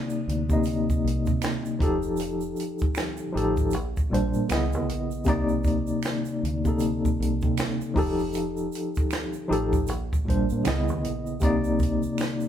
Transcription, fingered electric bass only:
0.28 0.85 D2 medium
1.05 1.26 C2 medium
1.28 1.63 C3 medium
1.81 2.54 F1 medium
2.82 muted fingered electric bass stroke soft
3.36 3.74 A1 medium
3.74 4.09 A#1 loud
4.13 4.34 A#1 medium
4.36 4.49 A#2 medium
4.51 4.75 C#2 medium
4.75 4.90 D#2 medium
4.90 5.24 A#1 medium
5.27 5.85 C2 medium
5.90 muted fingered electric bass stroke soft
6.43 7.01 D2 medium
7.20 7.41 C2 medium
7.43 7.78 C3 loud
7.97 8.69 F1 medium
8.98 muted fingered electric bass stroke soft
9.51 9.89 A1 medium
9.89 10.24 A#1 loud
10.29 10.50 A#1 medium
10.52 10.65 A#2 medium
10.67 10.90 C#2 loud
10.90 11.04 D#2 medium
11.04 11.39 A#1 medium
11.42 12.00 C2 medium
12.05 muted fingered electric bass stroke soft

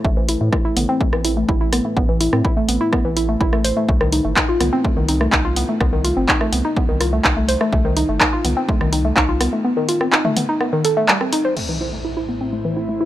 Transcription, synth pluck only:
0.05 0.13 A3 loud
0.17 0.25 E3 loud
0.29 0.37 E4 medium
0.41 0.49 A3 medium
0.53 0.61 E4 medium
0.65 0.76 E4 loud
0.77 0.85 B3 medium
0.89 0.97 C4 loud
1.01 1.06 A3 medium
1.13 1.21 E3 loud
1.25 1.33 E4 medium
1.37 1.48 A3 medium
1.49 1.57 E4 loud
1.61 1.72 E4 loud
1.73 1.81 B3 medium
1.85 1.93 A3 medium
1.97 2.08 B3 medium
2.09 2.17 E3 loud
2.21 2.32 E4 medium
2.33 2.41 C4 medium
2.45 2.53 E4 loud
2.57 2.68 A3 loud
2.69 2.77 B3 medium
2.81 2.89 E4 loud
2.93 3.04 B3 medium
3.05 3.13 E3 loud
3.17 3.28 E4 medium
3.29 3.40 A3 medium
3.41 3.49 E4 loud
3.53 3.64 A3 loud
3.65 3.69 C5 loud
3.77 3.85 A3 medium
3.88 3.97 A3 loud
4.01 4.09 D#3 loud
4.12 4.21 D#4 medium
4.25 4.33 A3 medium
4.36 4.45 D#4 medium
4.49 4.60 F4 loud
4.60 4.69 B3 medium
4.73 4.81 C4 loud
4.85 4.90 A3 medium
4.97 5.05 D#3 medium
5.09 5.17 D#4 medium
5.21 5.32 A3 medium
5.33 5.41 D#4 medium
5.45 5.56 F4 loud
5.57 5.65 B3 medium
5.69 5.77 A3 medium
5.81 5.92 B3 medium
5.93 6.01 D#3 loud
6.04 6.16 F4 medium
6.17 6.25 C4 medium
6.29 6.37 D#4 loud
6.41 6.52 A3 loud
6.53 6.61 B3 medium
6.65 6.73 D#4 loud
6.77 6.88 B3 medium
6.89 6.97 D#3 loud
7.01 7.12 F4 medium
7.13 7.24 A3 medium
7.24 7.33 D#4 loud
7.37 7.48 A3 loud
7.48 7.53 C5 loud
7.61 7.69 A3 loud
7.73 7.81 A3 loud
7.85 7.93 D#3 loud
7.97 8.05 D#4 medium
8.09 8.17 A3 medium
8.21 8.29 D#4 medium
8.33 8.44 F4 loud
8.45 8.53 B3 medium
8.57 8.65 C4 loud
8.69 8.74 A3 medium
8.81 8.89 D#3 loud
8.93 9.01 D#4 medium
9.05 9.16 A3 medium
9.17 9.25 D#4 loud
9.29 9.40 F4 loud
9.41 9.49 B3 medium
9.53 9.61 A3 medium
9.65 9.76 B3 medium
9.77 9.85 D#3 loud
9.89 10.00 F4 medium
10.01 10.09 C4 medium
10.13 10.21 D#4 loud
10.25 10.36 A3 loud
10.37 10.45 B3 medium
10.49 10.57 D#4 loud
10.61 10.72 B3 medium
10.73 10.81 D#3 loud
10.85 10.96 A4 loud
10.97 11.05 A3 loud
11.09 11.14 G3 medium
11.21 11.29 C4 medium
11.33 11.44 D#4 loud
11.45 11.53 C5 loud
11.57 11.65 A3 loud
11.69 11.77 E3 medium
11.81 11.89 E4 medium
11.93 12.01 A3 medium
12.05 12.13 E4 medium
12.17 12.28 E4 loud
12.29 12.37 B3 medium
12.41 12.49 C4 medium
12.53 12.58 A3 medium
12.65 12.73 E3 medium
12.77 12.85 E4 medium
12.89 13.00 A3 medium
13.01 13.05 E4 medium

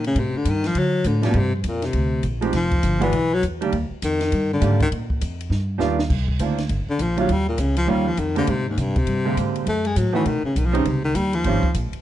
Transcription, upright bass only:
0.00 0.14 A#2 medium
0.15 0.33 A2 medium
0.33 muted upright bass stroke soft
0.45 0.74 G2 medium
0.75 1.04 D3 medium
1.04 1.33 A2 medium
1.34 1.63 G2 medium
1.64 1.93 F2 medium
1.94 2.22 D2 medium
2.23 2.52 A#1 medium
2.53 2.82 F1 medium
2.83 3.12 G1 medium
3.13 3.41 B1 medium
3.42 3.71 E2 medium
3.73 3.90 D#2 medium
3.90 muted upright bass stroke soft
4.02 4.31 F2 medium
4.32 4.61 G2 medium
4.62 4.90 G#2 medium
4.91 5.20 A#2 medium
5.21 5.49 F2 medium
5.50 5.79 G2 medium
5.79 6.08 D#2 medium
6.10 6.39 C2 medium
6.39 6.68 D2 medium
6.69 6.86 G1 medium
6.87 muted upright bass stroke soft
6.99 7.28 A#1 medium
7.29 7.58 D#2 medium
7.58 7.87 C#2 medium
7.88 8.17 D#2 medium
8.18 8.46 F2 medium
8.47 8.76 G#2 medium
8.77 9.06 C3 medium
9.07 9.35 G2 medium
9.37 9.65 G#2 medium
9.66 9.95 F#2 medium
9.96 10.25 A2 medium
10.26 10.42 B2 medium
10.43 muted upright bass stroke soft
10.56 10.84 B1 medium
10.85 11.14 C#2 medium
11.15 11.43 D#2 medium
11.44 11.61 G#1 medium
11.74 11.91 A#1 medium
11.93 muted upright bass stroke soft

